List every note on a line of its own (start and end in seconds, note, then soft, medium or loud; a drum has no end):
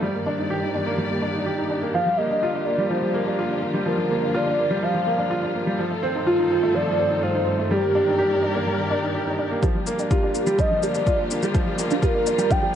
0.02 1.93 G2 medium
0.02 1.93 D#3 medium
0.02 0.14 G3 medium
0.02 1.93 A#3 medium
0.02 5.75 G4 medium
0.02 1.93 D5 medium
0.14 0.26 A#3 medium
0.26 0.38 D4 medium
0.38 0.50 D#4 medium
0.50 0.62 G4 medium
0.62 0.74 D#4 medium
0.75 0.86 D4 medium
0.86 0.98 A#3 medium
0.98 1.10 G3 medium
1.10 1.22 A#3 medium
1.22 1.34 D4 medium
1.34 1.46 D#4 medium
1.46 1.58 G4 medium
1.58 1.70 D#4 medium
1.70 1.82 D4 medium
1.82 1.94 A#3 medium
1.94 5.75 D3 medium
1.94 2.06 F3 medium
1.94 5.75 A#3 medium
1.94 7.67 F4 medium
1.94 2.19 F5 loud
2.06 2.18 G3 medium
2.17 2.30 A#3 medium
2.17 2.67 D#5 loud
2.30 2.42 D4 medium
2.43 2.54 F4 medium
2.54 2.66 D4 medium
2.65 2.78 A#3 medium
2.65 2.91 D5 medium
2.78 2.90 G3 medium
2.89 3.02 F3 medium
2.89 3.62 C5 medium
3.02 3.14 G3 medium
3.14 3.26 A#3 medium
3.26 3.38 D4 medium
3.39 3.50 F4 medium
3.51 3.62 D4 medium
3.62 3.74 A#3 medium
3.74 3.86 G3 medium
3.86 3.98 F3 medium
3.86 4.37 A#4 medium
3.98 4.10 G3 medium
4.10 4.22 A#3 medium
4.22 4.34 D4 medium
4.34 4.46 F4 medium
4.34 4.85 D5 medium
4.46 4.58 D4 medium
4.59 4.70 A#3 medium
4.71 4.82 G3 medium
4.82 4.94 F3 medium
4.82 5.31 F5 loud
4.95 5.06 G3 medium
5.07 5.18 A#3 medium
5.18 5.30 D4 medium
5.31 5.42 F4 medium
5.43 5.54 D4 medium
5.55 5.66 A#3 medium
5.67 5.78 G3 medium
5.79 9.59 G2 medium
5.79 9.59 D#3 medium
5.79 5.90 F3 medium
5.79 7.69 C4 medium
5.79 7.69 A4 medium
5.91 6.02 A3 medium
6.03 6.14 C4 medium
6.15 6.26 D#4 medium
6.26 6.76 F4 medium
6.26 6.38 F4 medium
6.39 6.50 D#4 medium
6.51 6.62 C4 medium
6.63 6.74 A3 medium
6.74 6.86 F3 medium
6.74 7.24 D5 loud
6.87 6.98 A3 medium
6.99 7.10 C4 medium
7.11 7.22 D#4 medium
7.23 7.34 F4 medium
7.23 7.71 C5 medium
7.35 7.46 D#4 medium
7.47 7.58 C4 medium
7.59 7.70 A3 medium
7.71 7.82 G3 medium
7.71 9.61 G4 medium
7.71 9.11 G4 loud
7.71 9.61 A#4 medium
7.71 9.61 D5 medium
7.83 7.94 A#3 medium
7.95 8.06 D4 medium
8.07 8.18 D#4 medium
8.18 8.30 G4 medium
8.31 8.42 D#4 medium
8.43 8.54 D4 medium
8.55 8.66 A#3 medium
8.67 8.78 G3 medium
8.79 8.90 A#3 medium
8.91 9.02 D4 medium
9.03 9.14 D#4 medium
9.15 9.26 G4 medium
9.27 9.38 D#4 medium
9.39 9.50 D4 medium
9.51 9.62 A#3 medium
9.63 12.75 D3 medium
9.63 9.74 F3 medium
9.63 12.75 A#3 medium
9.63 12.75 F4 medium
9.63 12.75 G4 medium
9.63 9.72 G4 medium
9.63 kick medium
9.63 shaker soft
9.75 9.86 G3 medium
9.87 10.02 G1 medium
9.87 9.98 A#3 medium
9.87 9.91 D5 medium
9.87 shaker medium
9.99 10.10 D4 medium
9.99 10.05 G5 medium
9.99 shaker soft
10.11 10.17 D4 medium
10.11 10.22 F4 medium
10.11 10.60 G4 medium
10.11 kick medium
10.11 shaker soft
10.23 10.34 D4 medium
10.23 10.32 G4 medium
10.35 10.50 G1 medium
10.35 10.46 A#3 medium
10.35 shaker medium
10.46 10.58 G3 medium
10.46 10.51 D5 medium
10.46 shaker soft
10.59 10.70 F3 medium
10.59 10.85 D#5 loud
10.59 10.65 G5 medium
10.59 kick medium
10.59 shaker soft
10.71 10.82 G3 medium
10.71 10.77 D4 medium
10.83 10.98 G1 loud
10.83 10.94 A#3 medium
10.83 10.92 G4 loud
10.83 11.55 D5 loud
10.83 shaker medium
10.94 11.06 D4 medium
10.94 shaker soft
11.07 11.18 F4 medium
11.07 kick medium
11.07 shaker soft
11.19 11.30 D4 medium
11.19 11.25 G5 medium
11.30 11.46 G1 loud
11.30 11.42 A#3 medium
11.30 11.37 D4 medium
11.30 shaker medium
11.42 11.54 G3 medium
11.42 11.52 G4 loud
11.42 shaker soft
11.54 11.66 F3 medium
11.54 kick loud
11.54 shaker soft
11.66 11.78 G3 medium
11.66 11.71 D5 medium
11.78 11.94 G1 medium
11.78 11.90 A#3 medium
11.78 11.85 G5 medium
11.78 shaker medium
11.91 12.02 D4 medium
11.91 11.97 D4 medium
11.91 shaker soft
12.02 12.14 F4 medium
12.02 12.12 G4 medium
12.02 12.52 A#4 medium
12.02 kick loud
12.02 shaker soft
12.14 12.26 D4 medium
12.26 12.42 G1 medium
12.26 12.38 A#3 medium
12.26 12.31 D5 medium
12.26 shaker medium
12.38 12.50 G3 medium
12.38 12.45 G5 medium
12.38 shaker soft
12.50 12.62 F3 medium
12.50 12.57 D4 medium
12.50 12.75 G5 loud
12.50 kick medium
12.50 shaker soft
12.62 12.74 G3 medium
12.62 12.72 G4 medium